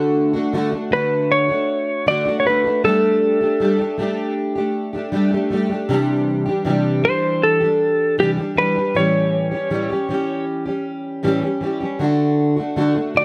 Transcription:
Already playing: D3 A3 D4 F#4
0.33 A3 D4 F#4
0.53 D3 A3 D4 F#4
0.72 A3 D4 F#4
0.91 D3 A3 D4 F#4 B4
1.32 C#5
1.48 A3 D4 F#4
2.06 D3 A3 D4 F#4 D5
2.26 A3 D4 F#4
2.40 C#5
2.45 D3 A3 D4 F#4 B4
2.64 A3 D4 F#4
2.84 G3 A3 D4 G4 A4
3.41 A3 D4 G4
3.60 G3 A3 D4 G4
3.79 A3 D4 G4
3.98 G3 A3 D4 G4
4.55 A3 D4 G4
4.93 A3 D4 G4
5.12 G3 A3 D4 G4
5.31 A3 D4 G4
5.50 G3 A3 D4 G4
5.69 A3 D4 G4
5.89 C3 E3 G3 D4 G4
6.46 G3 D4 G4
6.65 C3 E3 G3 D4 G4
7.03 E3 G3 C5
7.43 A4
7.60 G3 D4 G4
8.18 C3 E3 G3 D4 G4
8.37 G3 D4 G4
8.56 E3 G3 D4 G4 B4
8.75 G3 D4 G4
8.94 A2 E3 G3 C#4 G4 C#5
9.51 G3 C#4 G4
9.70 A2 E3 G3 C#4 G4
9.89 G3 C#4 G4
10.09 E3 G3 C#4 G4
10.66 G3 C#4 G4
11.23 A2 E3 G3 C#4 G4
11.42 G3 C#4 G4
11.61 E3 G3 C#4 G4
11.80 G3 C#4 G4
11.99 D3 A3 D4 F#4
12.57 A3 D4 F#4
12.76 D3 A3 D4 F#4
12.95 A3 D4 F#4
13.15 D3 A3 D4 F#4 D5

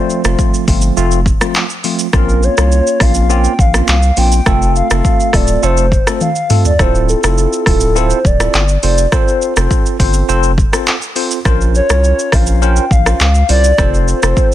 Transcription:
Already playing: F3 A3 C4 F4 C5
0.10 shaker
0.24 F1 F3 A3 C4 F4, cross-stick, shaker
0.39 kick, shaker
0.54 shaker
0.67 G1 F3 A3 C4 F4, kick, open hi-hat, shaker
0.82 shaker
0.97 F1 F3 A3 C4 F4, shaker
1.11 shaker
1.26 kick, shaker
1.41 F3 A3 C4 F4, cross-stick, shaker
1.55 clap, shaker
1.70 shaker
1.84 F3 A3 C4 F4, open hi-hat, shaker
1.99 shaker
2.13 A#1 A#3 C4 C#4 F4 A#4, kick, cross-stick, shaker
2.29 shaker
2.43 C#5, shaker
2.57 C2 A#3 C#4 F4, cross-stick, shaker
2.72 shaker
2.87 shaker
3.00 A#1 A#3 C4 C#4 F4 F5, kick, cross-stick, open hi-hat, shaker
3.15 shaker
3.29 A#3 C4 C#4 F4 G5, shaker
3.44 shaker
3.59 A#1 F5, kick, shaker
3.74 A#3 C4 C#4 F4, cross-stick, shaker
3.88 C2 F5, clap, shaker
4.02 shaker
4.17 A#1 A#3 C4 C#4 F4 G5, open hi-hat, shaker
4.32 shaker
4.46 F1 A3 C4 F4 A4, kick, cross-stick, shaker
4.62 shaker
4.76 F5, shaker
4.90 F1 A3 C4 F4 A4, cross-stick, shaker
5.05 kick, shaker
5.20 shaker
5.33 D1 A3 C4 F4 A4 D5, kick, cross-stick, open hi-hat, shaker
5.48 shaker
5.63 F1 A3 C4 F4 A4 C5, shaker
5.77 shaker
5.92 kick, shaker
6.07 A3 C4 F4 A4, cross-stick, shaker
6.21 F5, high tom, shaker
6.36 shaker
6.50 A3 C4 F4 A4, mid tom, open hi-hat, shaker
6.65 D5, floor tom, shaker
6.79 D1 C4 E4 F4 A4 C5, kick, cross-stick, shaker
6.95 shaker
7.09 A4, shaker
7.23 F1 C4 E4 F4 A4, cross-stick, shaker
7.38 shaker
7.53 shaker
7.66 D1 C4 E4 F4 A4, kick, cross-stick, open hi-hat, shaker
7.81 shaker
7.95 C4 E4 F4 A4 C5, shaker
8.10 shaker
8.25 D1 D5, kick, shaker
8.40 C4 E4 F4 A4, cross-stick, shaker
8.54 G1, clap, shaker
8.68 shaker
8.83 F1 C4 F4 A4 C5 D5, open hi-hat, shaker
8.98 shaker
9.12 C4 F4 A4 C5, kick, cross-stick, shaker
9.28 shaker
9.42 shaker
9.56 F1 C4 F4 A4 C5, cross-stick, shaker
9.71 kick, shaker
9.86 shaker
9.99 G1 C4 F4 A4 C5, kick, open hi-hat, shaker
10.14 shaker
10.28 F1 C4 F4 A4 C5, shaker
10.43 shaker
10.58 kick, shaker
10.73 C4 F4 A4 C5, cross-stick, shaker
10.87 clap, shaker
11.02 shaker
11.16 C4 F4 A4 C5, open hi-hat, shaker
11.31 shaker
11.45 A#1 C#4 F4 A#4 C5, kick, cross-stick, shaker
11.61 shaker
11.75 C#5, shaker
11.89 C2 C#4 F4 A#4 C#5, cross-stick, shaker
12.04 shaker
12.19 shaker
12.32 A#1 C#4 F4 A#4 C5 F5, kick, cross-stick, open hi-hat, shaker
12.47 shaker
12.62 C#4 F4 A#4 C5 G5, shaker
12.76 shaker
12.91 A#1 F5, kick, shaker
13.06 C#4 F4 A#4 C5, cross-stick, shaker
13.20 C#2 F5, clap, shaker
13.35 shaker
13.49 C2 C#4 F4 A#4 C5 D5, open hi-hat, shaker
13.64 shaker
13.78 F1 C4 F4 A4 C5, kick, cross-stick, shaker
13.94 shaker
14.08 C5, shaker
14.22 F1 C4 F4 A4 C5, cross-stick, shaker
14.37 kick, shaker

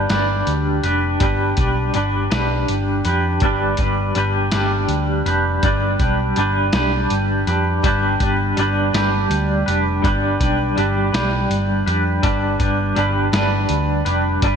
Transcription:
Already playing: G3 D4 G4
0.10 G1 G3 D4 G4 B4, snare, closed hi-hat
0.47 D2, closed hi-hat
0.83 F1 D4 G4 B4, closed hi-hat
1.20 G1 G3 D4 G4 B4, kick, closed hi-hat
1.57 B1 D4 G4 B4, kick, closed hi-hat
1.94 G1 G3 D4 G4 B4, closed hi-hat
2.30 B1 G3 D4 G4 B4, snare, closed hi-hat
2.68 G1, closed hi-hat
3.05 F2 D4 G4 B4, closed hi-hat
3.40 G1 G3 D4 G4, kick, closed hi-hat
3.45 B4
3.77 G1 G4 B4, kick, closed hi-hat
3.82 D4
4.15 G1 G3 D4 G4 B4, closed hi-hat
4.51 G1 G3 D4 G4 B4, snare, closed hi-hat
4.88 D2, closed hi-hat
5.26 F1 D4 G4 B4, closed hi-hat
5.63 G1 G3 D4 G4 B4, kick, closed hi-hat
6.00 B1 D4 G4 B4, kick, closed hi-hat
6.36 G1 G3 D4 G4 B4, closed hi-hat
6.73 B1 D4 G4 B4, snare, closed hi-hat
6.77 G3
7.10 G1, closed hi-hat
7.47 F2 D4 G4 B4, closed hi-hat
7.83 G1 G3 D4 G4 B4, kick, closed hi-hat
8.20 G1 D4 G4 B4, kick, closed hi-hat
8.57 G1 G3 D4 G4 B4, closed hi-hat
8.93 G1 G3 D4 G4 B4, snare, closed hi-hat
9.30 D2, closed hi-hat
9.66 F1 D4 G4 B4, closed hi-hat
10.02 G1 G3 D4 G4 B4, kick, closed hi-hat
10.40 B1 D4 G4 B4, kick, closed hi-hat
10.76 G1 G3 D4 G4 B4, closed hi-hat
11.12 B1 G3 D4 G4 B4, snare, closed hi-hat
11.50 G1, closed hi-hat
11.86 F2 D4 G4 B4, closed hi-hat
12.23 G1 G3 D4 G4 B4, kick, closed hi-hat
12.59 G1 D4 G4 B4, kick, closed hi-hat
12.95 G1 G3 D4 G4 B4, closed hi-hat
13.33 G1 G3 D4 G4 B4, snare, closed hi-hat
13.69 D2, closed hi-hat
14.05 F1 D4 G4 B4, closed hi-hat
14.42 G1 G3 D4 G4 B4, kick, closed hi-hat

